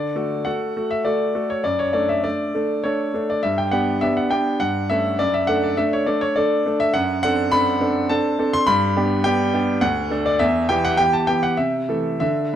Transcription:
grand piano
Already playing: D3 D5
0.15 A3 F#4 A4
0.45 A3 F#4 A4 F#5
0.76 A3 F#4 A4
0.91 E5
1.05 A3 F#4 A4 D5
1.35 A3 F#4 A4
1.50 C#5
1.64 F#2 D5
1.79 C#5
1.93 A3 D4 A4 D5
2.09 E5
2.24 A3 D4 A4 D5
2.55 A3 D4 A4
2.84 A3 D4 A4 C#5
3.14 A3 D4 A4
3.30 D5
3.43 G2 E5
3.58 G5
3.71 B3 D4 G4 F#5
4.01 B3 D4 G4 E5
4.17 F#5
4.31 B3 D4 G4 G5
4.60 G2 F#5
4.90 A3 C#4 A4 E5
5.19 F#2 D5
5.34 E5
5.47 A3 D4 A4 F#5
5.64 D5
5.77 A3 D4 A4 E5
5.93 C#5
6.06 A3 D4 A4 D5
6.21 C#5
6.36 A3 D4 A4 D5
6.66 A3 D4 A4
6.80 E5
6.94 F#2 F#5
7.23 C4 D4 A4 F#5
7.52 C4 D4 A4 B5
7.81 C4 D4 A4
8.09 C4 D4 A4 A5
8.39 C4 D4 A4
8.53 C6
8.67 G2 B5
8.96 B3 D4 G4
9.24 B3 D4 G4 G5
9.53 B3 D4 G4
9.81 D2 F#5
10.10 A3 D4 A4
10.26 D5
10.39 E2 E5
10.69 E3 B3 G4 G5
10.85 F#5
10.97 E3 B3 G4 G5
11.13 A5
11.27 E3 B3 G4 G5
11.43 F#5
11.57 C3 E5
11.89 E3 A3 A4
12.20 D3 E5

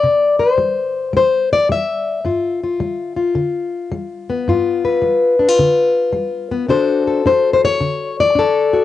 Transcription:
steel-string acoustic guitar
Already playing: D5
0.03 C3
0.39 C5
0.58 G3
1.13 G3 C5
1.53 D5
1.69 G3 E5
2.25 G2 F4
2.63 F4
2.80 G3
3.16 F4
3.35 D3
3.92 G3
4.30 B3
4.48 G2 F4
4.85 B4
5.02 G3
5.39 D4
5.49 F4
5.59 D3
6.13 G3
6.52 B3
6.69 D3 D4 F#4 A4 C5
7.07 A4
7.26 D4 C5
7.53 C5
7.65 C#5
7.81 D3
8.20 D5
8.35 D4 A4
8.73 F#4

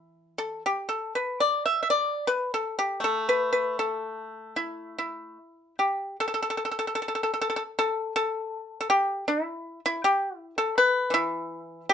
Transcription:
pipa
Already playing: E3
0.38 A4
0.66 G4
0.89 A4
1.15 B4
1.40 D5
1.66 E5
1.83 E5
1.90 D5
2.27 B4
2.54 A4
2.79 G4
3.00 A3 A4
3.29 B4
3.53 B4
3.79 A4
4.56 E4
4.98 E4
5.79 G4
6.20 A4
6.28 A4
6.34 A4
6.42 A4
6.50 A4
6.57 A4
6.65 A4
6.71 A4
6.79 A4
6.87 A4
6.95 A4
7.02 A4
7.08 A4
7.15 A4
7.23 A4
7.34 A4
7.41 A4
7.50 A4
7.56 A4
7.79 A4
8.16 A4
8.81 A4
8.90 G4
9.28 E4
9.86 E4
10.04 G4
10.38 E4
10.58 A4
10.78 B4
11.10 E3 E4
11.89 G4

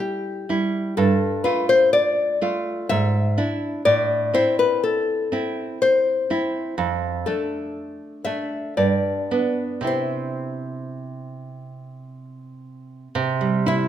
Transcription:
nylon-string guitar
Already playing: G3 E4
0.00 G4
0.49 G3 E4
0.97 G2 A4
1.44 A3 F4 B4
1.69 C5
1.93 D5
2.42 A3 F4
2.89 G#2 E5
3.38 D4 E4
3.85 A2 D5
4.34 C4 E4 C5
4.59 B4
4.84 A4
5.32 C4 E4
5.82 C5
6.30 C4 E4
6.78 F2
7.26 A3 D4 A4
8.25 A3 D4 E5
8.77 G2 D5
9.31 B3 D4
9.81 C3 C4 E4
9.87 C5
13.15 C3
13.41 G3
13.66 E4

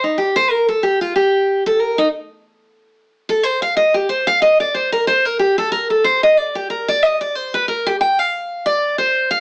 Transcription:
steel-string acoustic guitar
0.04 D#4
0.18 G4
0.36 C5
0.51 A#4
0.69 A4
0.83 G4
1.01 F4
1.16 G4
1.66 A4
1.80 A#4
1.98 D#4
3.29 A4
3.43 C5
3.62 F5
3.77 D#5
3.94 G4
4.09 C5
4.27 F5
4.42 D#5
4.60 D5
4.74 C5
4.92 A#4
5.07 C5
5.25 A#4
5.39 G4
5.58 A4
5.72 A#4
5.90 A4
6.04 C5
6.23 D#5
6.37 D5
6.55 G4
6.70 A#4
6.88 D5
7.03 D#5
7.21 D5
7.35 C5
7.54 B4
7.68 A#4
7.86 G4
8.01 G5
8.19 F5
8.66 D5
8.98 C5
9.31 F5

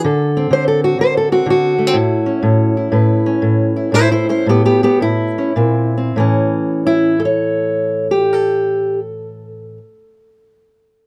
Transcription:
steel-string acoustic guitar
0.04 D3 A4
0.37 C4
0.51 D3 C5
0.68 A4
0.84 F#4
0.99 D3 C5
1.17 A4
1.32 C4 F#4
1.46 D3
1.50 F#4
1.79 A3
1.87 C4
1.93 A2 E4
2.26 C#4
2.43 A2
2.77 E4
2.92 A2 B4
3.26 C#4
3.42 A2
3.76 E4
3.92 A2 E4 C5
4.11 E4 C5
4.29 C#4 E4 C5
4.46 A2 B3 G4
4.65 B3 G4
4.83 B3 G4
5.00 A2 E4
5.38 C#4
5.56 A#2 C4
5.98 C4
6.16 A2 E3 C#4
6.87 E4
7.20 A4
7.25 C#5
8.11 G4
8.33 A4

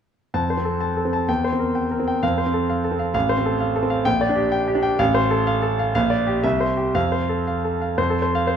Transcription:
grand piano
0.34 F2 A5
0.50 C5
0.57 C4
0.65 A4
0.81 A5
0.97 A4
1.05 C4
1.13 A5
1.28 E2 G5
1.44 C5
1.52 C4
1.59 A#4
1.75 G5
1.91 A#4
2.00 C4
2.08 G5
2.23 F2 F5
2.38 C5
2.46 C4
2.54 A4
2.70 F5
2.84 A4
2.91 C4
2.99 F5
3.14 A1 F5
3.29 C5
3.38 C4
3.46 A4
3.60 F5
3.76 A4
3.83 C4
3.90 F5
4.05 A#1 G5
4.21 D5
4.29 D4
4.36 G4
4.52 G5
4.68 G4
4.75 D4
4.83 G5
4.99 A1 F5
5.14 C5
5.31 A4
5.47 F5
5.62 A4
5.79 F5
5.95 A#1 F5
6.10 D5
6.27 G4
6.43 C2 E5
6.60 C5
6.77 G4
6.95 F2 F5
7.12 C5
7.29 A4
7.47 F5
7.64 A4
7.82 F5
7.98 F2 C5
8.10 A4
8.22 C5
8.35 F5
8.47 C5

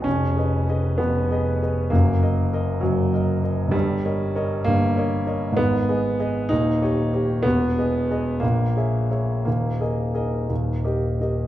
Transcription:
grand piano
0.02 F2 C#4
0.07 F1
0.37 G#4 B4 D#5
0.68 G#4 B4 D#5
0.98 F1 F2 B3
1.31 G#4 B4 D#5
1.62 G#4 B4 D#5
1.90 F#1 F#2 A#3
2.23 A#4 D#5
2.53 A#4 D#5
2.81 F#1 F#2 F#3
3.14 A#4 D#5
3.44 A#4 D#5
3.68 G1 G3
3.73 G2
4.05 A#4 C#5 D#5
4.35 A#4 C#5 D#5
4.64 G1 G2 A#3
4.97 A#4 C#5 D#5
5.27 A#4 C#5 D#5
5.52 G#2
5.57 G#1 B3
5.89 G#4 B4 D#5
6.19 G#4 B4 D#5
6.49 D#1 D#2 D#4
6.82 G4 C#5 D#5
7.14 G4 C#5 D#5
7.43 E1 E2 B3
7.78 G#4 B4 D#5
8.11 G#4 B4 D#5
8.40 A#1 A#2 A#3
8.77 G#4 C#5 E5
9.10 G#4 C#5 E5
9.45 D#1 D#2 A#3
9.80 G#4 A#4 D#5
10.14 G#4 A#4 D#5
10.49 D#1 D#2
10.85 G4 A#4 D#5
11.21 G4 A#4 D#5

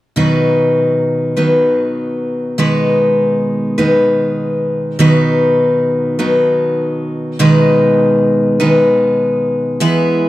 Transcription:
steel-string acoustic guitar
0.16 B2 D#3 F#3 B3 D#4 B4
1.37 B2 D#3 F#3 B3 D#4 B4
2.58 B2 D#3 G#3 B3 D#4 B4
3.78 B2 D#3 G#3 B3 D#4 B4
4.99 B2 D#3 F#3 B3 D#4 B4
6.19 B2 D#3 F#3 B3 D#4 B4
7.39 B2 D#3 G#3 B3 D#4 B4
8.60 B2 D#3 G#3 B3 D#4 B4
9.80 E3 G#3 B3 E4 B4

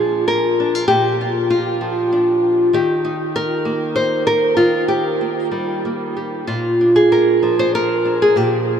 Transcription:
nylon-string guitar
Already playing: A#2 F3 D4 G#4
0.28 A#4
0.60 D4
0.75 F4
0.88 A#2 G4
1.21 F4
1.50 F4
1.81 F3
2.12 D4
2.73 D#3 G4
3.05 D#4
3.36 A#4
3.65 A#3
3.96 C5
4.27 A#4
4.57 D#3 F4
4.88 G4
5.21 A#3
5.51 G3
5.85 A#3
6.17 G4
6.47 A#2 F4
6.81 D4
6.96 G#4
7.12 A#4
7.43 F3
7.59 C5
7.75 A#4
8.05 D4
8.22 G#4
8.36 A#2 G4

